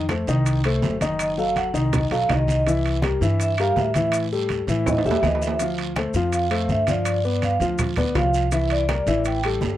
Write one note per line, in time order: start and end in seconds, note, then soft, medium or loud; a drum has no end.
0.00 0.22 F2 medium
0.09 0.25 A3 medium
0.09 0.25 A4 medium
0.09 0.25 C5 medium
0.09 high conga medium
0.09 high timbale medium
0.09 short guiro medium
0.09 claves medium
0.09 maracas soft
0.27 0.79 C2 loud
0.27 0.58 D#3 medium
0.27 0.59 D#4 medium
0.27 0.59 D#5 medium
0.27 high conga soft
0.27 short guiro medium
0.27 maracas medium
0.46 high conga soft
0.46 high timbale medium
0.46 long guiro medium
0.46 maracas medium
0.64 0.95 A3 medium
0.64 0.95 A4 medium
0.64 0.95 C5 medium
0.64 high conga soft
0.64 high timbale medium
0.64 claves medium
0.64 maracas soft
0.82 1.68 F#1 medium
0.82 high conga medium
0.82 low timbale medium
0.82 short guiro medium
0.82 maracas soft
1.01 1.32 D#3 medium
1.01 1.32 D#4 medium
1.01 1.32 D#5 medium
1.01 high conga medium
1.01 high timbale medium
1.01 short guiro medium
1.01 maracas medium
1.19 1.39 D#5 medium
1.19 high conga soft
1.19 high timbale medium
1.19 long guiro medium
1.19 claves medium
1.19 maracas medium
1.37 1.68 F#3 medium
1.37 1.68 F#4 medium
1.37 1.68 A4 medium
1.37 1.56 F5 medium
1.37 high conga soft
1.37 maracas soft
1.56 1.68 F#5 medium
1.56 high conga medium
1.56 high timbale medium
1.56 short guiro medium
1.56 maracas soft
1.74 2.08 C2 medium
1.74 2.04 D#3 medium
1.74 2.04 D#4 medium
1.74 2.05 D#5 medium
1.74 short guiro medium
1.74 maracas medium
1.93 2.11 D#5 medium
1.93 high conga soft
1.93 low conga medium
1.93 high timbale medium
1.93 long guiro medium
1.93 claves medium
1.93 maracas medium
2.11 2.28 B1 medium
2.11 2.26 F#3 medium
2.11 2.26 F#4 medium
2.11 2.26 A4 medium
2.11 2.29 F5 loud
2.11 high conga soft
2.11 high timbale medium
2.11 maracas soft
2.29 3.15 C2 medium
2.29 2.60 D#3 medium
2.29 2.60 D#4 medium
2.29 2.60 D#5 medium
2.29 2.48 D#5 medium
2.29 high conga medium
2.29 high timbale medium
2.29 low timbale medium
2.29 short guiro medium
2.29 claves medium
2.29 maracas soft
2.47 2.67 D#5 medium
2.47 high conga medium
2.47 short guiro medium
2.47 maracas medium
2.67 2.97 E3 medium
2.67 2.97 E4 medium
2.67 2.97 E5 medium
2.67 high timbale medium
2.67 long guiro medium
2.67 maracas medium
2.85 high conga soft
2.85 high timbale medium
2.85 maracas soft
3.02 3.19 G3 medium
3.02 3.19 G4 medium
3.02 3.19 A#4 medium
3.02 high conga loud
3.02 high timbale medium
3.02 short guiro medium
3.02 claves medium
3.02 maracas soft
3.21 3.72 G2 loud
3.21 3.52 E3 medium
3.21 3.52 E4 medium
3.21 3.52 E5 medium
3.21 high conga soft
3.21 short guiro medium
3.21 maracas medium
3.40 3.59 E5 medium
3.40 high conga soft
3.40 high timbale medium
3.40 long guiro medium
3.40 maracas medium
3.58 3.89 G3 medium
3.58 3.89 G4 medium
3.58 3.89 A#4 medium
3.58 3.77 F5 loud
3.58 high conga soft
3.58 high timbale medium
3.58 claves medium
3.58 maracas soft
3.76 4.62 A2 medium
3.76 3.94 E5 medium
3.76 high conga medium
3.76 low timbale medium
3.76 short guiro medium
3.76 maracas soft
3.94 4.25 E3 medium
3.94 4.25 E4 medium
3.94 4.13 E5 medium
3.94 4.26 E5 medium
3.94 high conga medium
3.94 high timbale medium
3.94 short guiro medium
3.94 maracas medium
4.12 high conga soft
4.12 high timbale loud
4.12 long guiro medium
4.12 claves medium
4.12 maracas medium
4.32 4.62 G3 medium
4.32 4.62 G4 medium
4.32 4.62 A4 medium
4.32 high conga soft
4.32 maracas soft
4.49 high conga medium
4.49 high timbale medium
4.49 short guiro medium
4.49 maracas soft
4.67 5.02 A2 loud
4.67 4.98 E3 medium
4.67 4.98 E4 medium
4.67 4.99 E5 medium
4.67 short guiro medium
4.67 maracas medium
4.86 5.05 D#5 medium
4.86 high conga soft
4.86 low conga medium
4.86 high timbale medium
4.86 long guiro medium
4.86 claves medium
4.86 maracas medium
4.98 high timbale medium
5.04 5.21 E2 medium
5.04 5.20 G3 medium
5.04 5.20 G4 medium
5.04 5.21 A4 medium
5.04 5.23 E5 loud
5.04 high conga soft
5.04 low conga medium
5.04 maracas soft
5.11 low timbale medium
5.22 6.08 D2 medium
5.22 5.54 E3 medium
5.22 5.54 E4 medium
5.22 5.42 D#5 medium
5.22 5.54 E5 medium
5.22 high conga medium
5.22 low timbale medium
5.22 short guiro medium
5.22 claves medium
5.22 maracas soft
5.35 low timbale medium
5.42 5.53 E5 loud
5.42 short guiro medium
5.42 maracas medium
5.47 low timbale medium
5.59 5.90 F3 medium
5.59 5.91 F4 medium
5.59 5.91 F5 medium
5.59 high conga soft
5.59 high timbale medium
5.59 long guiro medium
5.59 maracas medium
5.78 high conga soft
5.78 high timbale medium
5.78 maracas soft
5.96 6.12 A3 medium
5.96 6.12 A4 medium
5.96 6.12 C5 medium
5.96 high conga loud
5.96 high timbale medium
5.96 short guiro medium
5.96 claves medium
5.96 maracas soft
6.14 6.65 F2 medium
6.14 6.45 F3 medium
6.14 6.45 F4 medium
6.14 6.46 F5 medium
6.14 high conga soft
6.14 short guiro medium
6.14 maracas medium
6.32 6.68 F5 medium
6.32 high conga soft
6.32 high timbale medium
6.32 long guiro medium
6.32 maracas medium
6.51 6.81 A3 medium
6.51 6.81 A4 medium
6.51 6.81 C5 medium
6.51 high conga soft
6.51 high timbale medium
6.51 claves medium
6.51 maracas soft
6.68 7.54 G2 medium
6.68 6.88 E5 medium
6.68 high conga medium
6.68 short guiro medium
6.68 maracas soft
6.87 7.18 F3 medium
6.87 7.18 F4 medium
6.87 7.40 D5 medium
6.87 7.18 F5 medium
6.87 high conga medium
6.87 high timbale medium
6.87 short guiro medium
6.87 maracas medium
7.05 high conga soft
7.05 high timbale medium
7.05 long guiro medium
7.05 claves medium
7.05 maracas medium
7.24 7.55 B3 medium
7.24 7.55 B4 medium
7.24 7.55 D5 medium
7.24 high conga soft
7.24 maracas soft
7.42 7.61 F5 medium
7.42 high conga medium
7.42 high timbale medium
7.42 short guiro medium
7.42 maracas soft
7.60 7.94 D2 loud
7.60 7.91 F3 medium
7.60 7.91 F4 medium
7.60 7.91 F5 medium
7.60 short guiro medium
7.60 maracas medium
7.78 high conga soft
7.78 low conga medium
7.78 high timbale medium
7.78 long guiro medium
7.78 claves medium
7.78 maracas medium
7.96 8.14 D2 medium
7.96 8.12 B3 medium
7.96 8.13 B4 medium
7.96 8.12 D5 medium
7.96 high conga soft
7.96 low conga medium
7.96 high timbale medium
7.96 maracas soft
8.15 9.01 C2 medium
8.15 8.45 F3 medium
8.15 8.46 F4 medium
8.15 8.46 F5 medium
8.15 8.51 F5 medium
8.15 high conga medium
8.15 high timbale medium
8.15 low timbale medium
8.15 short guiro medium
8.15 claves medium
8.15 maracas soft
8.34 short guiro medium
8.34 maracas medium
8.52 8.82 E3 medium
8.52 8.83 E4 medium
8.52 8.83 E5 medium
8.52 8.71 E5 medium
8.52 high conga soft
8.52 high timbale medium
8.52 long guiro medium
8.52 maracas medium
8.70 9.22 D5 medium
8.70 high conga soft
8.70 high timbale medium
8.70 maracas soft
8.89 9.04 G3 medium
8.89 9.04 G4 medium
8.89 9.04 A#4 medium
8.89 high conga loud
8.89 high timbale medium
8.89 short guiro medium
8.89 claves medium
8.89 maracas soft
9.06 9.58 A1 loud
9.06 9.37 E3 medium
9.06 9.38 E4 medium
9.06 9.38 E5 medium
9.06 high conga soft
9.06 short guiro medium
9.06 maracas medium
9.25 9.44 G5 medium
9.25 high conga soft
9.25 high timbale medium
9.25 long guiro medium
9.25 maracas medium
9.44 9.74 G3 medium
9.44 9.75 G4 medium
9.44 9.75 A4 medium
9.44 high conga soft
9.44 high timbale medium
9.44 claves medium
9.44 maracas soft
9.61 9.77 G1 medium
9.61 high conga medium
9.61 low timbale medium
9.61 short guiro medium
9.61 maracas soft